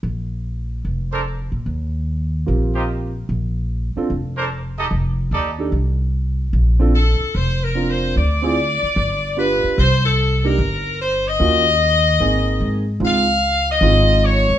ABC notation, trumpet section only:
X:1
M:4/4
L:1/8
Q:"Swing" 1/4=148
K:Bb
V:1 name="Trumpet section"
z4 z [DABc] z2 | z4 z [EFGc] z2 | z4 z [DABc] z [EGAe] | z2 [EGAd] z4 z |
z8 | z8 | z8 | z8 |
z8 |]